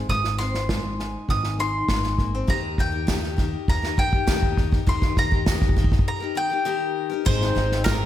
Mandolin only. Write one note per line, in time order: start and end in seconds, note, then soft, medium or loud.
0.10 0.38 D#6 medium
0.38 1.30 C6 medium
1.30 1.60 D#6 medium
1.60 2.49 C6 medium
2.50 2.80 A#5 medium
2.80 3.69 G5 medium
3.69 3.98 A#5 medium
3.99 4.88 G5 medium
4.89 5.18 C6 medium
5.19 6.07 A#5 loud
6.08 6.37 A#5 medium
6.37 7.23 G5 medium
7.26 7.82 C5 loud
7.84 8.06 A#4 loud